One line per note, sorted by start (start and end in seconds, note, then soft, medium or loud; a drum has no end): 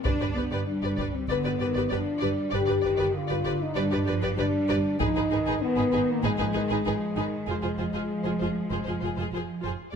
0.05 0.12 G1 soft
0.05 0.34 D4 soft
0.05 0.65 D4 medium
0.05 0.11 G4 soft
0.05 0.12 B4 soft
0.05 0.11 D5 soft
0.05 taiko soft
0.21 0.27 G1 soft
0.21 0.27 G4 soft
0.21 0.27 B4 soft
0.21 0.27 D5 soft
0.35 0.43 G1 soft
0.35 0.67 B3 soft
0.35 0.44 G4 soft
0.35 0.43 B4 soft
0.35 0.42 D5 soft
0.51 0.58 G1 soft
0.51 0.57 G4 medium
0.51 0.59 B4 soft
0.51 0.58 D5 soft
0.66 1.28 G3 soft
0.66 1.12 D4 medium
0.82 0.90 G1 soft
0.82 0.89 G4 soft
0.82 0.91 B4 soft
0.82 0.88 D5 soft
0.97 1.04 G1 soft
0.97 1.04 G4 soft
0.97 1.06 B4 soft
0.97 1.04 D5 soft
0.97 taiko soft
1.14 1.29 C4 soft
1.28 1.35 G1 soft
1.28 1.59 D3 soft
1.28 1.92 B3 soft
1.28 1.36 G4 soft
1.28 1.36 B4 soft
1.28 1.35 D5 soft
1.44 1.51 G1 soft
1.44 1.51 G4 soft
1.44 1.51 B4 soft
1.44 1.51 D5 soft
1.59 1.67 G1 soft
1.59 1.91 D#3 soft
1.59 1.67 G4 soft
1.59 1.67 B4 soft
1.59 1.65 D5 soft
1.74 1.82 G1 soft
1.74 1.82 G4 medium
1.74 1.83 B4 soft
1.74 1.80 D5 soft
1.89 1.98 G1 soft
1.89 2.21 F3 soft
1.89 2.53 D4 medium
1.89 1.97 G4 soft
1.89 1.98 B4 soft
1.89 1.95 D5 soft
2.19 2.29 G1 soft
2.19 2.53 G3 soft
2.19 2.28 G4 medium
2.19 2.29 B4 soft
2.19 2.26 D5 medium
2.50 2.59 G1 soft
2.50 2.84 D3 soft
2.50 2.59 G4 soft
2.50 3.14 G4 medium
2.50 2.60 B4 soft
2.50 2.57 D5 medium
2.66 2.75 G1 soft
2.66 2.74 G4 soft
2.66 2.75 B4 soft
2.66 2.73 D5 soft
2.81 2.90 G1 soft
2.81 3.15 D#3 soft
2.81 2.90 G4 soft
2.81 2.91 B4 soft
2.81 2.88 D5 soft
2.97 3.05 G1 soft
2.97 3.06 G4 soft
2.97 3.05 B4 medium
2.97 3.04 D5 soft
3.15 3.77 D3 soft
3.15 3.61 F4 medium
3.28 3.37 G1 soft
3.28 3.36 G4 soft
3.28 3.36 B4 soft
3.28 3.35 D5 soft
3.45 3.52 G1 medium
3.45 3.51 G4 medium
3.45 3.52 B4 soft
3.45 3.51 D5 soft
3.61 3.77 D#4 medium
3.75 3.83 G1 medium
3.75 4.07 G3 soft
3.75 4.21 D4 medium
3.75 3.82 G4 medium
3.75 3.83 B4 medium
3.75 3.82 D5 medium
3.91 3.99 G1 soft
3.91 3.98 G4 soft
3.91 3.99 B4 soft
3.91 3.98 D5 soft
4.07 4.14 G1 soft
4.07 4.38 F3 medium
4.07 4.13 G4 soft
4.07 4.14 B4 soft
4.07 4.13 D5 soft
4.23 4.30 G1 medium
4.23 4.29 G4 medium
4.23 4.29 B4 medium
4.23 4.29 D5 medium
4.38 4.45 G1 soft
4.38 5.00 G3 medium
4.38 4.99 D4 medium
4.38 4.45 G4 soft
4.38 4.45 B4 soft
4.38 4.45 D5 soft
4.69 4.76 G1 medium
4.69 4.75 G4 medium
4.69 4.75 B4 medium
4.69 4.76 D5 medium
5.00 5.07 G#1 medium
5.00 5.31 F3 medium
5.00 5.61 D#4 medium
5.00 5.07 D#4 medium
5.00 5.06 G#4 medium
5.00 5.07 B4 medium
5.00 taiko medium
5.16 5.22 G#1 soft
5.16 5.23 D#4 soft
5.16 5.22 G#4 soft
5.16 5.22 B4 soft
5.31 5.37 G#1 soft
5.31 5.61 D#3 medium
5.31 5.37 D#4 soft
5.31 5.38 G#4 soft
5.31 5.38 B4 soft
5.46 5.53 G#1 medium
5.46 5.53 D#4 medium
5.46 5.53 G#4 medium
5.46 5.54 B4 medium
5.62 6.23 D#3 soft
5.62 6.08 B3 medium
5.76 5.84 G#1 soft
5.76 5.84 D#4 soft
5.76 5.83 G#4 soft
5.76 5.83 B4 soft
5.92 5.99 G#1 medium
5.92 6.00 D#4 medium
5.92 5.99 G#4 medium
5.92 5.99 B4 medium
6.11 6.25 A#3 medium
6.23 6.30 G#1 medium
6.23 6.55 F3 medium
6.23 7.48 G#3 medium
6.23 6.30 D#4 medium
6.23 6.30 G#4 medium
6.23 6.30 B4 medium
6.38 6.46 G#1 soft
6.38 6.46 D#4 soft
6.38 6.45 G#4 medium
6.38 6.46 B4 soft
6.54 6.61 G#1 soft
6.54 6.86 D#3 soft
6.54 6.62 D#4 soft
6.54 6.60 G#4 soft
6.54 6.61 B4 soft
6.70 6.76 G#1 medium
6.70 6.77 D#4 medium
6.70 6.76 G#4 medium
6.70 6.77 B4 medium
6.86 6.92 G#1 soft
6.86 7.16 F3 soft
6.86 6.93 D#4 soft
6.86 6.92 G#4 soft
6.86 6.93 B4 soft
7.16 7.23 G#1 soft
7.16 7.48 D#3 soft
7.16 7.23 D#4 soft
7.16 7.23 G#4 soft
7.16 7.25 B4 soft
7.47 7.54 F1 soft
7.47 9.64 F3 soft
7.47 9.30 G#3 medium
7.47 7.54 F4 soft
7.47 7.54 G#4 soft
7.47 7.55 C5 soft
7.63 7.69 F1 soft
7.63 7.70 F4 soft
7.63 7.69 G#4 soft
7.63 7.69 C5 soft
7.77 7.85 F1 soft
7.77 7.85 F4 soft
7.77 7.85 G#4 soft
7.77 7.84 C5 soft
7.92 8.00 F1 soft
7.92 8.01 F4 soft
7.92 8.01 G#4 soft
7.92 7.99 C5 soft
8.23 8.31 F1 soft
8.23 8.31 F4 soft
8.23 8.32 G#4 soft
8.23 8.30 C5 soft
8.39 8.47 F1 soft
8.39 8.47 F4 soft
8.39 8.48 G#4 soft
8.39 8.46 C5 soft
8.70 8.77 F1 soft
8.70 8.77 F4 soft
8.70 8.78 G#4 soft
8.70 8.77 C5 soft
8.85 8.93 F1 soft
8.85 8.93 F4 soft
8.85 8.94 G#4 soft
8.85 8.91 C5 soft
9.00 9.08 F1 soft
9.00 9.09 F4 soft
9.00 9.07 C5 soft
9.05 9.11 G#4 soft
9.17 9.23 F1 soft
9.17 9.24 F4 soft
9.17 9.26 G#4 soft
9.17 9.23 C5 soft
9.33 9.39 F1 soft
9.33 9.39 F4 soft
9.33 9.42 G#4 soft
9.33 9.40 C5 soft
9.63 9.70 F1 soft
9.63 9.69 F4 soft
9.63 9.72 G#4 soft
9.63 9.70 C5 soft